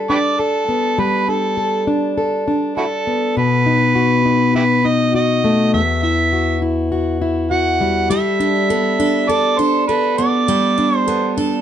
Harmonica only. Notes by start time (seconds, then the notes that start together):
0.10 G4 B4 D5
0.40 A4
0.99 B4
1.29 A4
2.78 E4 F#4 A4
3.37 B4
4.56 E4 G4 B4
4.86 D#5
5.15 D#5
5.74 E5
6.03 E5
7.51 F#5
8.10 E5
9.29 D5
9.58 C5
9.87 B4
10.18 D5
10.97 C5